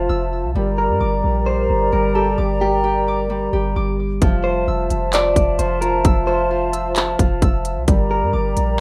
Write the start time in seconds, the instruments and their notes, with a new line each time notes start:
Already playing: harp F3 F4, flute section F4 C5 E5 A5
0.09 808-style bass F1, harp E6
0.44 808-style bass C2
0.55 808-style bass G1, harp G3, flute section G4 A#4 D5 A#5
0.78 clean electric guitar A#4
0.89 808-style bass G2
1.00 808-style bass G1, harp D6
1.24 808-style bass A#1
1.46 clean electric guitar C5
1.70 808-style bass G1
1.92 808-style bass G1, harp G3, clean electric guitar A#4
2.15 harp G4, clean electric guitar A4
2.38 808-style bass G1, harp D6
2.61 harp G3, clean electric guitar G4
2.84 harp G4
3.08 harp D6
3.30 harp G3
3.53 808-style bass G1, harp G4
3.76 808-style bass G1, harp D6
4.22 808-style bass F1, harp F3, flute section F4 C5 E5 A5, kick, closed hi-hat
4.44 clean electric guitar C5
4.67 808-style bass F1, harp E6
4.90 808-style bass F1, closed hi-hat
5.13 clean electric guitar D5, clap, closed hi-hat
5.36 808-style bass F1, kick, closed hi-hat
5.59 808-style bass F1, harp F3, clean electric guitar C5, closed hi-hat
5.81 harp F4, clean electric guitar A#4, closed hi-hat
6.05 808-style bass F1, harp E6, kick, closed hi-hat
6.27 harp F3, clean electric guitar C5
6.51 harp F4
6.73 harp E6, closed hi-hat
6.96 harp F3, clap, closed hi-hat
7.19 808-style bass F1, harp F4, kick, closed hi-hat
7.42 808-style bass F1, harp E6, kick, closed hi-hat
7.65 closed hi-hat
7.76 808-style bass C2
7.87 808-style bass G1, harp G3, flute section G4 A#4 D5 A#5, kick, closed hi-hat
8.11 clean electric guitar A#4
8.22 808-style bass G2
8.33 808-style bass G1, harp D6
8.57 808-style bass A#1, closed hi-hat